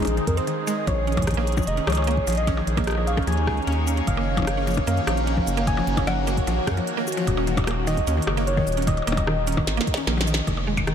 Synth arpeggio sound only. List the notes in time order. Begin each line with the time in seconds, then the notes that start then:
0.17 D#3
0.37 C4
0.47 D#3
0.67 G#3
0.87 F3
1.07 C#4
1.17 F3
1.37 A#3
1.57 F3
1.77 C#4
1.87 F3
2.07 A#3
2.27 F3
2.47 C#4
2.57 F3
2.77 A#3
2.97 F3
3.17 C#4
3.27 F3
3.47 G#4
3.67 C#4
3.87 C#4
3.97 C#4
4.17 A#3
4.37 F3
4.57 C#4
4.67 F3
4.87 A#3
5.07 F3
5.27 C#4
5.37 F3
5.57 A#3
5.77 F3
5.97 C#4
6.07 F3
6.27 A#3
6.47 F3
6.67 C#4
6.77 F3
6.97 A#3
7.17 F3
7.37 C#4
7.47 D#3
7.67 A#3
7.87 D#3
8.07 C#4
8.17 D#3
8.37 A#3
8.57 D#3
8.77 C#4
8.87 D#3
9.07 A#3
9.27 D#3
9.47 C#4
9.57 D#3
9.77 A#3
9.97 C#4
10.07 A#3
10.17 F#3
10.27 D#3
10.47 D#3
10.67 G#3
10.87 D#3